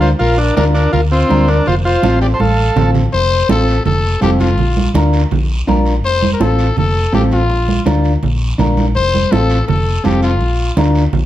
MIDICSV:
0, 0, Header, 1, 6, 480
1, 0, Start_track
1, 0, Key_signature, -1, "major"
1, 0, Tempo, 364299
1, 269, Time_signature, 4, 2, 24, 8
1, 14832, End_track
2, 0, Start_track
2, 0, Title_t, "Trumpet"
2, 0, Program_c, 0, 56
2, 19, Note_on_c, 0, 72, 68
2, 129, Note_off_c, 0, 72, 0
2, 259, Note_on_c, 0, 70, 84
2, 487, Note_off_c, 0, 70, 0
2, 498, Note_on_c, 0, 70, 64
2, 727, Note_off_c, 0, 70, 0
2, 739, Note_on_c, 0, 70, 74
2, 850, Note_off_c, 0, 70, 0
2, 986, Note_on_c, 0, 70, 68
2, 1212, Note_off_c, 0, 70, 0
2, 1227, Note_on_c, 0, 70, 73
2, 1336, Note_off_c, 0, 70, 0
2, 1468, Note_on_c, 0, 65, 70
2, 1918, Note_off_c, 0, 65, 0
2, 1959, Note_on_c, 0, 70, 64
2, 2180, Note_off_c, 0, 70, 0
2, 2199, Note_on_c, 0, 72, 78
2, 2306, Note_off_c, 0, 72, 0
2, 2443, Note_on_c, 0, 72, 80
2, 2886, Note_off_c, 0, 72, 0
2, 2920, Note_on_c, 0, 74, 74
2, 2986, Note_off_c, 0, 74, 0
2, 3084, Note_on_c, 0, 81, 54
2, 3160, Note_off_c, 0, 81, 0
2, 3168, Note_on_c, 0, 77, 66
2, 3833, Note_off_c, 0, 77, 0
2, 4121, Note_on_c, 0, 72, 113
2, 4567, Note_off_c, 0, 72, 0
2, 4616, Note_on_c, 0, 69, 94
2, 5055, Note_off_c, 0, 69, 0
2, 5084, Note_on_c, 0, 69, 90
2, 5529, Note_off_c, 0, 69, 0
2, 5568, Note_on_c, 0, 67, 86
2, 5674, Note_off_c, 0, 67, 0
2, 5796, Note_on_c, 0, 65, 76
2, 6468, Note_off_c, 0, 65, 0
2, 7970, Note_on_c, 0, 72, 112
2, 8326, Note_off_c, 0, 72, 0
2, 8344, Note_on_c, 0, 70, 71
2, 8446, Note_on_c, 0, 69, 98
2, 8466, Note_off_c, 0, 70, 0
2, 8922, Note_off_c, 0, 69, 0
2, 8934, Note_on_c, 0, 69, 90
2, 9373, Note_off_c, 0, 69, 0
2, 9410, Note_on_c, 0, 67, 81
2, 9515, Note_off_c, 0, 67, 0
2, 9651, Note_on_c, 0, 65, 84
2, 10313, Note_off_c, 0, 65, 0
2, 11801, Note_on_c, 0, 72, 114
2, 12278, Note_on_c, 0, 69, 102
2, 12298, Note_off_c, 0, 72, 0
2, 12744, Note_off_c, 0, 69, 0
2, 12752, Note_on_c, 0, 69, 82
2, 13237, Note_on_c, 0, 67, 89
2, 13256, Note_off_c, 0, 69, 0
2, 13467, Note_off_c, 0, 67, 0
2, 13475, Note_on_c, 0, 65, 75
2, 14141, Note_off_c, 0, 65, 0
2, 14832, End_track
3, 0, Start_track
3, 0, Title_t, "Clean electric guitar"
3, 0, Program_c, 1, 27
3, 748, Note_on_c, 1, 62, 67
3, 754, Note_on_c, 1, 65, 71
3, 763, Note_on_c, 1, 70, 64
3, 1086, Note_off_c, 1, 62, 0
3, 1090, Note_off_c, 1, 65, 0
3, 1092, Note_off_c, 1, 70, 0
3, 1701, Note_on_c, 1, 62, 72
3, 1713, Note_on_c, 1, 65, 50
3, 1715, Note_on_c, 1, 70, 72
3, 2045, Note_off_c, 1, 62, 0
3, 2047, Note_off_c, 1, 65, 0
3, 2051, Note_off_c, 1, 70, 0
3, 2670, Note_on_c, 1, 60, 68
3, 2676, Note_on_c, 1, 65, 60
3, 2684, Note_on_c, 1, 69, 56
3, 3009, Note_off_c, 1, 60, 0
3, 3012, Note_off_c, 1, 65, 0
3, 3014, Note_off_c, 1, 69, 0
3, 3637, Note_on_c, 1, 60, 65
3, 3642, Note_on_c, 1, 65, 63
3, 3654, Note_on_c, 1, 69, 59
3, 3973, Note_off_c, 1, 60, 0
3, 3978, Note_off_c, 1, 65, 0
3, 3980, Note_off_c, 1, 69, 0
3, 4600, Note_on_c, 1, 60, 69
3, 4611, Note_on_c, 1, 65, 59
3, 4615, Note_on_c, 1, 69, 72
3, 4937, Note_off_c, 1, 60, 0
3, 4938, Note_off_c, 1, 65, 0
3, 4943, Note_off_c, 1, 69, 0
3, 5547, Note_on_c, 1, 60, 69
3, 5551, Note_on_c, 1, 65, 63
3, 5562, Note_on_c, 1, 69, 71
3, 5890, Note_off_c, 1, 60, 0
3, 5892, Note_off_c, 1, 65, 0
3, 5894, Note_off_c, 1, 69, 0
3, 6519, Note_on_c, 1, 62, 90
3, 6528, Note_on_c, 1, 65, 68
3, 6533, Note_on_c, 1, 70, 90
3, 6856, Note_off_c, 1, 62, 0
3, 6858, Note_off_c, 1, 65, 0
3, 6862, Note_off_c, 1, 70, 0
3, 7476, Note_on_c, 1, 62, 77
3, 7481, Note_on_c, 1, 65, 76
3, 7492, Note_on_c, 1, 70, 90
3, 7814, Note_off_c, 1, 62, 0
3, 7817, Note_off_c, 1, 65, 0
3, 7820, Note_off_c, 1, 70, 0
3, 8435, Note_on_c, 1, 60, 73
3, 8440, Note_on_c, 1, 65, 71
3, 8453, Note_on_c, 1, 69, 73
3, 8773, Note_off_c, 1, 60, 0
3, 8777, Note_off_c, 1, 65, 0
3, 8780, Note_off_c, 1, 69, 0
3, 9389, Note_on_c, 1, 60, 67
3, 9395, Note_on_c, 1, 65, 63
3, 9400, Note_on_c, 1, 69, 72
3, 9729, Note_off_c, 1, 60, 0
3, 9732, Note_off_c, 1, 65, 0
3, 9735, Note_off_c, 1, 69, 0
3, 10353, Note_on_c, 1, 62, 87
3, 10359, Note_on_c, 1, 65, 77
3, 10368, Note_on_c, 1, 70, 85
3, 10690, Note_off_c, 1, 62, 0
3, 10693, Note_off_c, 1, 65, 0
3, 10698, Note_off_c, 1, 70, 0
3, 11309, Note_on_c, 1, 62, 86
3, 11323, Note_on_c, 1, 65, 61
3, 11324, Note_on_c, 1, 70, 92
3, 11649, Note_off_c, 1, 62, 0
3, 11651, Note_off_c, 1, 65, 0
3, 11655, Note_off_c, 1, 70, 0
3, 12272, Note_on_c, 1, 60, 68
3, 12278, Note_on_c, 1, 65, 65
3, 12285, Note_on_c, 1, 69, 78
3, 12608, Note_off_c, 1, 60, 0
3, 12611, Note_off_c, 1, 65, 0
3, 12614, Note_off_c, 1, 69, 0
3, 13227, Note_on_c, 1, 60, 67
3, 13232, Note_on_c, 1, 65, 62
3, 13241, Note_on_c, 1, 69, 64
3, 13564, Note_off_c, 1, 60, 0
3, 13567, Note_off_c, 1, 65, 0
3, 13569, Note_off_c, 1, 69, 0
3, 14188, Note_on_c, 1, 62, 86
3, 14191, Note_on_c, 1, 65, 83
3, 14204, Note_on_c, 1, 70, 79
3, 14523, Note_off_c, 1, 62, 0
3, 14526, Note_off_c, 1, 65, 0
3, 14529, Note_off_c, 1, 70, 0
3, 14832, End_track
4, 0, Start_track
4, 0, Title_t, "Transistor combo organ"
4, 0, Program_c, 2, 18
4, 8, Note_on_c, 2, 65, 80
4, 121, Note_off_c, 2, 65, 0
4, 253, Note_on_c, 2, 65, 84
4, 498, Note_on_c, 2, 62, 80
4, 509, Note_off_c, 2, 65, 0
4, 727, Note_off_c, 2, 62, 0
4, 743, Note_on_c, 2, 62, 87
4, 853, Note_off_c, 2, 62, 0
4, 980, Note_on_c, 2, 62, 71
4, 1209, Note_off_c, 2, 62, 0
4, 1220, Note_on_c, 2, 65, 86
4, 1331, Note_off_c, 2, 65, 0
4, 1471, Note_on_c, 2, 60, 82
4, 1951, Note_on_c, 2, 62, 73
4, 1967, Note_off_c, 2, 60, 0
4, 2200, Note_off_c, 2, 62, 0
4, 2203, Note_on_c, 2, 65, 87
4, 2309, Note_off_c, 2, 65, 0
4, 2440, Note_on_c, 2, 65, 89
4, 2885, Note_off_c, 2, 65, 0
4, 2921, Note_on_c, 2, 67, 78
4, 2986, Note_off_c, 2, 67, 0
4, 3083, Note_on_c, 2, 72, 59
4, 3161, Note_on_c, 2, 69, 76
4, 3166, Note_off_c, 2, 72, 0
4, 3830, Note_off_c, 2, 69, 0
4, 14832, End_track
5, 0, Start_track
5, 0, Title_t, "Fingered electric bass"
5, 0, Program_c, 3, 33
5, 0, Note_on_c, 3, 38, 86
5, 167, Note_off_c, 3, 38, 0
5, 267, Note_on_c, 3, 34, 107
5, 653, Note_off_c, 3, 34, 0
5, 747, Note_on_c, 3, 38, 87
5, 1133, Note_off_c, 3, 38, 0
5, 1226, Note_on_c, 3, 38, 90
5, 1613, Note_off_c, 3, 38, 0
5, 1715, Note_on_c, 3, 38, 90
5, 2099, Note_off_c, 3, 38, 0
5, 2195, Note_on_c, 3, 29, 97
5, 2579, Note_off_c, 3, 29, 0
5, 2676, Note_on_c, 3, 33, 91
5, 3061, Note_off_c, 3, 33, 0
5, 3155, Note_on_c, 3, 33, 87
5, 3540, Note_off_c, 3, 33, 0
5, 3639, Note_on_c, 3, 33, 89
5, 4023, Note_off_c, 3, 33, 0
5, 4120, Note_on_c, 3, 29, 90
5, 4504, Note_off_c, 3, 29, 0
5, 4593, Note_on_c, 3, 33, 87
5, 4980, Note_off_c, 3, 33, 0
5, 5073, Note_on_c, 3, 29, 91
5, 5460, Note_off_c, 3, 29, 0
5, 5556, Note_on_c, 3, 29, 100
5, 6040, Note_off_c, 3, 29, 0
5, 6040, Note_on_c, 3, 34, 100
5, 6424, Note_off_c, 3, 34, 0
5, 6511, Note_on_c, 3, 38, 93
5, 6898, Note_off_c, 3, 38, 0
5, 7000, Note_on_c, 3, 34, 88
5, 7384, Note_off_c, 3, 34, 0
5, 7479, Note_on_c, 3, 34, 92
5, 7961, Note_off_c, 3, 34, 0
5, 7961, Note_on_c, 3, 29, 95
5, 8344, Note_off_c, 3, 29, 0
5, 8443, Note_on_c, 3, 33, 89
5, 8825, Note_off_c, 3, 33, 0
5, 8913, Note_on_c, 3, 29, 92
5, 9299, Note_off_c, 3, 29, 0
5, 9395, Note_on_c, 3, 33, 102
5, 9876, Note_off_c, 3, 33, 0
5, 9876, Note_on_c, 3, 34, 88
5, 10260, Note_off_c, 3, 34, 0
5, 10356, Note_on_c, 3, 38, 87
5, 10740, Note_off_c, 3, 38, 0
5, 10837, Note_on_c, 3, 34, 93
5, 11220, Note_off_c, 3, 34, 0
5, 11319, Note_on_c, 3, 34, 97
5, 11802, Note_on_c, 3, 29, 97
5, 11821, Note_off_c, 3, 34, 0
5, 12182, Note_off_c, 3, 29, 0
5, 12278, Note_on_c, 3, 33, 87
5, 12659, Note_off_c, 3, 33, 0
5, 12754, Note_on_c, 3, 29, 92
5, 13136, Note_off_c, 3, 29, 0
5, 13231, Note_on_c, 3, 29, 98
5, 13712, Note_off_c, 3, 29, 0
5, 13712, Note_on_c, 3, 34, 93
5, 14094, Note_off_c, 3, 34, 0
5, 14188, Note_on_c, 3, 38, 91
5, 14571, Note_off_c, 3, 38, 0
5, 14659, Note_on_c, 3, 34, 86
5, 14832, Note_off_c, 3, 34, 0
5, 14832, End_track
6, 0, Start_track
6, 0, Title_t, "Drums"
6, 20, Note_on_c, 9, 73, 62
6, 27, Note_on_c, 9, 63, 63
6, 152, Note_off_c, 9, 73, 0
6, 159, Note_off_c, 9, 63, 0
6, 261, Note_on_c, 9, 74, 73
6, 268, Note_on_c, 9, 63, 34
6, 393, Note_off_c, 9, 74, 0
6, 399, Note_off_c, 9, 63, 0
6, 749, Note_on_c, 9, 73, 69
6, 754, Note_on_c, 9, 63, 86
6, 880, Note_off_c, 9, 73, 0
6, 886, Note_off_c, 9, 63, 0
6, 985, Note_on_c, 9, 73, 67
6, 1117, Note_off_c, 9, 73, 0
6, 1222, Note_on_c, 9, 74, 68
6, 1236, Note_on_c, 9, 63, 36
6, 1236, Note_on_c, 9, 64, 77
6, 1354, Note_off_c, 9, 74, 0
6, 1368, Note_off_c, 9, 63, 0
6, 1368, Note_off_c, 9, 64, 0
6, 1707, Note_on_c, 9, 73, 65
6, 1720, Note_on_c, 9, 63, 81
6, 1839, Note_off_c, 9, 73, 0
6, 1852, Note_off_c, 9, 63, 0
6, 1948, Note_on_c, 9, 73, 61
6, 2079, Note_off_c, 9, 73, 0
6, 2188, Note_on_c, 9, 74, 64
6, 2203, Note_on_c, 9, 63, 33
6, 2203, Note_on_c, 9, 64, 70
6, 2320, Note_off_c, 9, 74, 0
6, 2335, Note_off_c, 9, 63, 0
6, 2335, Note_off_c, 9, 64, 0
6, 2673, Note_on_c, 9, 73, 70
6, 2681, Note_on_c, 9, 63, 86
6, 2805, Note_off_c, 9, 73, 0
6, 2813, Note_off_c, 9, 63, 0
6, 2915, Note_on_c, 9, 73, 64
6, 3047, Note_off_c, 9, 73, 0
6, 3157, Note_on_c, 9, 74, 68
6, 3163, Note_on_c, 9, 63, 65
6, 3289, Note_off_c, 9, 74, 0
6, 3295, Note_off_c, 9, 63, 0
6, 3638, Note_on_c, 9, 73, 60
6, 3642, Note_on_c, 9, 64, 98
6, 3770, Note_off_c, 9, 73, 0
6, 3774, Note_off_c, 9, 64, 0
6, 3879, Note_on_c, 9, 73, 60
6, 3886, Note_on_c, 9, 64, 70
6, 4011, Note_off_c, 9, 73, 0
6, 4017, Note_off_c, 9, 64, 0
6, 4121, Note_on_c, 9, 74, 74
6, 4128, Note_on_c, 9, 63, 33
6, 4252, Note_off_c, 9, 74, 0
6, 4259, Note_off_c, 9, 63, 0
6, 4603, Note_on_c, 9, 63, 89
6, 4603, Note_on_c, 9, 73, 68
6, 4735, Note_off_c, 9, 63, 0
6, 4735, Note_off_c, 9, 73, 0
6, 4845, Note_on_c, 9, 73, 69
6, 4976, Note_off_c, 9, 73, 0
6, 5079, Note_on_c, 9, 74, 71
6, 5085, Note_on_c, 9, 63, 33
6, 5085, Note_on_c, 9, 64, 80
6, 5210, Note_off_c, 9, 74, 0
6, 5217, Note_off_c, 9, 63, 0
6, 5217, Note_off_c, 9, 64, 0
6, 5557, Note_on_c, 9, 73, 66
6, 5563, Note_on_c, 9, 63, 77
6, 5689, Note_off_c, 9, 73, 0
6, 5694, Note_off_c, 9, 63, 0
6, 5798, Note_on_c, 9, 73, 66
6, 5802, Note_on_c, 9, 63, 65
6, 5930, Note_off_c, 9, 73, 0
6, 5934, Note_off_c, 9, 63, 0
6, 6033, Note_on_c, 9, 74, 72
6, 6046, Note_on_c, 9, 63, 34
6, 6046, Note_on_c, 9, 64, 65
6, 6165, Note_off_c, 9, 74, 0
6, 6178, Note_off_c, 9, 63, 0
6, 6178, Note_off_c, 9, 64, 0
6, 6280, Note_on_c, 9, 63, 73
6, 6412, Note_off_c, 9, 63, 0
6, 6513, Note_on_c, 9, 73, 67
6, 6523, Note_on_c, 9, 63, 88
6, 6645, Note_off_c, 9, 73, 0
6, 6655, Note_off_c, 9, 63, 0
6, 6760, Note_on_c, 9, 73, 64
6, 6892, Note_off_c, 9, 73, 0
6, 7000, Note_on_c, 9, 74, 70
6, 7007, Note_on_c, 9, 63, 34
6, 7007, Note_on_c, 9, 64, 83
6, 7132, Note_off_c, 9, 74, 0
6, 7138, Note_off_c, 9, 63, 0
6, 7138, Note_off_c, 9, 64, 0
6, 7477, Note_on_c, 9, 73, 66
6, 7487, Note_on_c, 9, 63, 83
6, 7609, Note_off_c, 9, 73, 0
6, 7618, Note_off_c, 9, 63, 0
6, 7715, Note_on_c, 9, 73, 62
6, 7847, Note_off_c, 9, 73, 0
6, 7961, Note_on_c, 9, 74, 72
6, 7964, Note_on_c, 9, 63, 34
6, 8092, Note_off_c, 9, 74, 0
6, 8096, Note_off_c, 9, 63, 0
6, 8201, Note_on_c, 9, 63, 69
6, 8333, Note_off_c, 9, 63, 0
6, 8438, Note_on_c, 9, 73, 66
6, 8442, Note_on_c, 9, 63, 91
6, 8570, Note_off_c, 9, 73, 0
6, 8574, Note_off_c, 9, 63, 0
6, 8678, Note_on_c, 9, 73, 66
6, 8810, Note_off_c, 9, 73, 0
6, 8916, Note_on_c, 9, 74, 68
6, 8928, Note_on_c, 9, 63, 35
6, 8928, Note_on_c, 9, 64, 83
6, 9047, Note_off_c, 9, 74, 0
6, 9060, Note_off_c, 9, 63, 0
6, 9060, Note_off_c, 9, 64, 0
6, 9398, Note_on_c, 9, 73, 62
6, 9407, Note_on_c, 9, 63, 80
6, 9530, Note_off_c, 9, 73, 0
6, 9539, Note_off_c, 9, 63, 0
6, 9637, Note_on_c, 9, 73, 65
6, 9643, Note_on_c, 9, 63, 60
6, 9769, Note_off_c, 9, 73, 0
6, 9775, Note_off_c, 9, 63, 0
6, 9877, Note_on_c, 9, 74, 75
6, 9888, Note_on_c, 9, 63, 35
6, 10009, Note_off_c, 9, 74, 0
6, 10020, Note_off_c, 9, 63, 0
6, 10122, Note_on_c, 9, 63, 71
6, 10254, Note_off_c, 9, 63, 0
6, 10357, Note_on_c, 9, 73, 65
6, 10364, Note_on_c, 9, 63, 92
6, 10488, Note_off_c, 9, 73, 0
6, 10496, Note_off_c, 9, 63, 0
6, 10596, Note_on_c, 9, 73, 68
6, 10728, Note_off_c, 9, 73, 0
6, 10840, Note_on_c, 9, 74, 67
6, 10845, Note_on_c, 9, 63, 33
6, 10845, Note_on_c, 9, 64, 81
6, 10972, Note_off_c, 9, 74, 0
6, 10977, Note_off_c, 9, 63, 0
6, 10977, Note_off_c, 9, 64, 0
6, 11318, Note_on_c, 9, 73, 65
6, 11320, Note_on_c, 9, 63, 83
6, 11320, Note_on_c, 9, 64, 70
6, 11449, Note_off_c, 9, 73, 0
6, 11452, Note_off_c, 9, 63, 0
6, 11452, Note_off_c, 9, 64, 0
6, 11556, Note_on_c, 9, 73, 62
6, 11564, Note_on_c, 9, 63, 62
6, 11687, Note_off_c, 9, 73, 0
6, 11696, Note_off_c, 9, 63, 0
6, 11796, Note_on_c, 9, 74, 69
6, 11805, Note_on_c, 9, 63, 32
6, 11928, Note_off_c, 9, 74, 0
6, 11937, Note_off_c, 9, 63, 0
6, 12048, Note_on_c, 9, 63, 67
6, 12180, Note_off_c, 9, 63, 0
6, 12275, Note_on_c, 9, 73, 69
6, 12287, Note_on_c, 9, 63, 96
6, 12407, Note_off_c, 9, 73, 0
6, 12419, Note_off_c, 9, 63, 0
6, 12514, Note_on_c, 9, 73, 70
6, 12646, Note_off_c, 9, 73, 0
6, 12758, Note_on_c, 9, 74, 71
6, 12762, Note_on_c, 9, 63, 34
6, 12762, Note_on_c, 9, 64, 88
6, 12890, Note_off_c, 9, 74, 0
6, 12893, Note_off_c, 9, 63, 0
6, 12893, Note_off_c, 9, 64, 0
6, 13232, Note_on_c, 9, 73, 68
6, 13240, Note_on_c, 9, 63, 85
6, 13364, Note_off_c, 9, 73, 0
6, 13371, Note_off_c, 9, 63, 0
6, 13472, Note_on_c, 9, 73, 65
6, 13604, Note_off_c, 9, 73, 0
6, 13712, Note_on_c, 9, 63, 34
6, 13713, Note_on_c, 9, 74, 75
6, 13844, Note_off_c, 9, 63, 0
6, 13845, Note_off_c, 9, 74, 0
6, 14191, Note_on_c, 9, 63, 91
6, 14194, Note_on_c, 9, 73, 74
6, 14323, Note_off_c, 9, 63, 0
6, 14325, Note_off_c, 9, 73, 0
6, 14427, Note_on_c, 9, 73, 67
6, 14559, Note_off_c, 9, 73, 0
6, 14664, Note_on_c, 9, 63, 36
6, 14664, Note_on_c, 9, 64, 84
6, 14666, Note_on_c, 9, 74, 68
6, 14796, Note_off_c, 9, 63, 0
6, 14796, Note_off_c, 9, 64, 0
6, 14797, Note_off_c, 9, 74, 0
6, 14832, End_track
0, 0, End_of_file